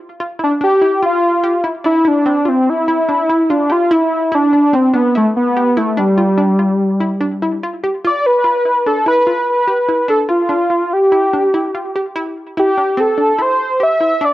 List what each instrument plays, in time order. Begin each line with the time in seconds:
0.20 synth arpeggio sound F4
0.39 synth arpeggio sound E4
0.44 analog synth lead D4
0.61 synth arpeggio sound D4, analog synth lead G4
0.82 synth arpeggio sound E4
1.03 synth arpeggio sound F4, analog synth lead F4
1.44 synth arpeggio sound G4
1.64 synth arpeggio sound E4
1.84 synth arpeggio sound D4, analog synth lead E4
2.05 analog synth lead D4, synth arpeggio sound E4
2.26 synth arpeggio sound C4
2.45 analog synth lead C4, synth arpeggio sound F4
2.69 analog synth lead E4
2.88 synth arpeggio sound E4
3.09 synth arpeggio sound D4
3.29 synth arpeggio sound E4
3.50 analog synth lead D4, synth arpeggio sound F4
3.70 analog synth lead F4, synth arpeggio sound G4
3.91 synth arpeggio sound E4, analog synth lead E4
4.32 analog synth lead D4, synth arpeggio sound E4
4.53 synth arpeggio sound D4
4.73 synth arpeggio sound C4, analog synth lead C4
4.94 analog synth lead B3, synth arpeggio sound D4
5.15 analog synth lead A3, synth arpeggio sound E4
5.36 analog synth lead B3
5.57 synth arpeggio sound G4
5.77 analog synth lead A3, synth arpeggio sound E4
5.97 analog synth lead G3, synth arpeggio sound D4
6.18 synth arpeggio sound F4
6.38 synth arpeggio sound D4
6.59 synth arpeggio sound F4
7.00 synth arpeggio sound E4
7.21 synth arpeggio sound D4
7.42 synth arpeggio sound E4
7.63 synth arpeggio sound F4
7.84 synth arpeggio sound G4
8.05 synth arpeggio sound F4, analog synth lead D5
8.26 analog synth lead B4
8.44 synth arpeggio sound F4
8.65 synth arpeggio sound E4
8.86 synth arpeggio sound D4, analog synth lead A4
9.06 synth arpeggio sound E4, analog synth lead B4
9.27 synth arpeggio sound F4
9.49 analog synth lead B4
9.68 synth arpeggio sound G4
9.89 synth arpeggio sound E4
10.08 synth arpeggio sound D4, analog synth lead A4
10.29 synth arpeggio sound F4, analog synth lead F4
10.49 synth arpeggio sound D4
10.70 synth arpeggio sound F4
10.93 analog synth lead G4
11.12 synth arpeggio sound E4
11.33 synth arpeggio sound D4
11.54 synth arpeggio sound E4
11.75 synth arpeggio sound F4
11.96 synth arpeggio sound G4
12.16 synth arpeggio sound E4
12.57 synth arpeggio sound E4, analog synth lead G4
12.77 synth arpeggio sound D4
12.97 synth arpeggio sound C4, analog synth lead A4
13.18 synth arpeggio sound D4
13.38 synth arpeggio sound E4, analog synth lead C5
13.80 synth arpeggio sound G4, analog synth lead E5
14.01 synth arpeggio sound E4
14.21 synth arpeggio sound D4, analog synth lead D5